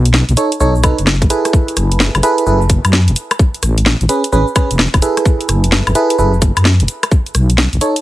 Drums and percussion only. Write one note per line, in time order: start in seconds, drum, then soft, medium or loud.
0.05 closed hi-hat medium
0.05 shaker soft
0.14 snare loud
0.14 shaker soft
0.29 closed hi-hat soft
0.29 shaker soft
0.37 closed hi-hat loud
0.37 shaker medium
0.52 closed hi-hat medium
0.52 shaker soft
0.60 shaker soft
0.75 shaker soft
0.84 kick loud
0.84 closed hi-hat loud
0.84 high woodblock medium
0.84 shaker medium
0.98 closed hi-hat medium
0.98 shaker soft
1.07 snare loud
1.07 shaker soft
1.22 kick loud
1.22 closed hi-hat medium
1.22 shaker soft
1.30 closed hi-hat loud
1.30 shaker medium
1.45 cross-stick medium
1.45 closed hi-hat medium
1.45 shaker soft
1.53 kick loud
1.53 shaker soft
1.68 closed hi-hat soft
1.68 shaker soft
1.77 cross-stick medium
1.77 closed hi-hat loud
1.77 shaker medium
1.92 closed hi-hat medium
1.92 shaker soft
2.00 snare loud
2.00 shaker soft
2.15 closed hi-hat soft
2.15 high woodblock medium
2.15 shaker soft
2.23 closed hi-hat loud
2.23 shaker medium
2.38 closed hi-hat medium
2.38 shaker soft
2.46 shaker soft
2.61 shaker soft
2.70 kick loud
2.70 closed hi-hat loud
2.70 shaker medium
2.85 closed hi-hat medium
2.85 high woodblock medium
2.85 shaker soft
2.93 snare loud
2.93 shaker soft
3.08 closed hi-hat medium
3.08 shaker soft
3.16 closed hi-hat loud
3.16 shaker medium
3.31 cross-stick medium
3.31 closed hi-hat medium
3.31 high woodblock medium
3.31 shaker soft
3.39 kick loud
3.39 shaker soft
3.54 closed hi-hat soft
3.54 shaker soft
3.63 cross-stick medium
3.63 closed hi-hat loud
3.63 shaker medium
3.78 closed hi-hat medium
3.78 shaker soft
3.86 snare loud
3.86 shaker soft
4.01 closed hi-hat soft
4.01 shaker soft
4.09 closed hi-hat loud
4.09 shaker medium
4.24 closed hi-hat medium
4.24 shaker soft
4.33 shaker soft
4.47 shaker soft
4.56 kick loud
4.56 closed hi-hat loud
4.56 high woodblock medium
4.56 shaker medium
4.71 closed hi-hat medium
4.71 shaker soft
4.79 snare loud
4.79 shaker soft
4.94 kick loud
4.94 closed hi-hat medium
4.94 high woodblock medium
4.94 shaker soft
5.02 closed hi-hat loud
5.02 shaker medium
5.17 cross-stick medium
5.17 closed hi-hat medium
5.17 shaker soft
5.25 kick loud
5.25 shaker soft
5.41 closed hi-hat soft
5.41 shaker soft
5.49 cross-stick medium
5.49 closed hi-hat loud
5.49 shaker medium
5.64 closed hi-hat medium
5.64 shaker soft
5.72 snare loud
5.72 shaker soft
5.87 closed hi-hat soft
5.87 high woodblock medium
5.87 shaker soft
5.95 closed hi-hat loud
5.95 shaker medium
6.10 closed hi-hat medium
6.10 shaker soft
6.19 shaker soft
6.34 shaker soft
6.42 kick loud
6.42 closed hi-hat loud
6.42 shaker medium
6.57 closed hi-hat medium
6.57 high woodblock medium
6.57 shaker soft
6.65 snare loud
6.65 shaker soft
6.80 closed hi-hat medium
6.80 shaker soft
6.88 closed hi-hat loud
6.88 shaker medium
7.03 cross-stick medium
7.03 closed hi-hat medium
7.03 high woodblock medium
7.03 shaker soft
7.12 kick loud
7.12 shaker soft
7.26 closed hi-hat soft
7.26 shaker soft
7.35 cross-stick medium
7.35 closed hi-hat loud
7.35 shaker medium
7.50 closed hi-hat medium
7.50 shaker soft
7.58 snare loud
7.58 shaker soft
7.73 closed hi-hat soft
7.73 shaker soft
7.81 closed hi-hat loud
7.81 shaker medium
7.96 closed hi-hat medium
7.96 shaker soft